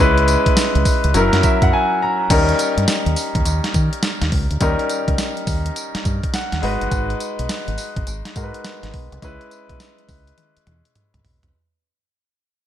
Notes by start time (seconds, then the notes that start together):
0.00 C#2 G#3 C#4 E4 B4
0.18 closed hi-hat
0.28 closed hi-hat, tambourine
0.46 kick, closed hi-hat
0.57 snare, closed hi-hat, tambourine
0.75 C#2, closed hi-hat
0.85 kick, open hi-hat, tambourine
1.04 C#2, closed hi-hat
1.14 F#1 F#3 C#4 E4 A#4, closed hi-hat, tambourine
1.33 F#2, snare, closed hi-hat
1.43 E5, kick, closed hi-hat, tambourine
1.62 F#2 F#5, kick, closed hi-hat
1.73 G#5
2.02 A#5
2.30 D#2 G3 C#4 D#4 A#4, kick, closed hi-hat, crash, tambourine
2.49 closed hi-hat
2.59 closed hi-hat, tambourine
2.77 G2, closed hi-hat
2.88 snare, closed hi-hat, tambourine
3.06 D#2, closed hi-hat
3.16 open hi-hat, tambourine
3.35 D#2, kick, closed hi-hat
3.45 D#2, closed hi-hat, tambourine
3.64 snare, closed hi-hat
3.74 D#3, kick, closed hi-hat, tambourine
3.93 closed hi-hat
4.03 snare, closed hi-hat, tambourine
4.22 D#2, snare, closed hi-hat
4.32 C#2, kick, open hi-hat
4.51 D2, closed hi-hat
4.60 D#2 G3 C#4 D#4 A#4, kick, closed hi-hat, tambourine
4.79 closed hi-hat
4.89 closed hi-hat, tambourine
5.08 C#2, kick, closed hi-hat
5.18 snare, closed hi-hat, tambourine
5.37 closed hi-hat
5.47 D#2, kick, open hi-hat, tambourine
5.66 closed hi-hat
5.76 closed hi-hat, tambourine
5.95 muted fingered electric bass stroke, snare, closed hi-hat
6.05 G2, kick, closed hi-hat, tambourine
6.24 kick, closed hi-hat
6.34 F#5, snare, closed hi-hat, tambourine
6.52 D#2, snare, closed hi-hat
6.62 G#1 G#3 D#4 F#4 B4, open hi-hat
6.81 G1, closed hi-hat
6.92 G#1, kick, closed hi-hat, tambourine
7.10 closed hi-hat
7.20 closed hi-hat, tambourine
7.39 B1, closed hi-hat
7.49 snare, closed hi-hat, tambourine
7.68 G#1, closed hi-hat
7.78 open hi-hat, tambourine
7.96 G#1, kick, closed hi-hat
8.07 G#1, closed hi-hat, tambourine
8.25 snare, closed hi-hat
8.36 G#2 G#3 D#4 F#4 A#4, kick, closed hi-hat, tambourine
8.43 B4
8.54 closed hi-hat
8.65 snare, closed hi-hat, tambourine
8.83 G#1, snare, closed hi-hat
8.94 B1, kick, open hi-hat
9.12 C2, closed hi-hat
9.22 C#2 G#3 C#4 E4 B4, kick, closed hi-hat, tambourine
9.41 closed hi-hat
9.51 closed hi-hat, tambourine
9.69 B1, kick, closed hi-hat
9.80 snare, closed hi-hat, tambourine
9.98 closed hi-hat
10.09 C#2, kick, open hi-hat, tambourine
10.27 closed hi-hat
10.38 closed hi-hat, high tom
10.57 muted fingered electric bass stroke, closed hi-hat
10.67 E2, closed hi-hat, mid tom
10.85 closed hi-hat
10.95 closed hi-hat, mid tom
11.14 C#2, closed hi-hat, mid tom
11.25 B1, floor tom, open hi-hat
11.43 C2, closed hi-hat, floor tom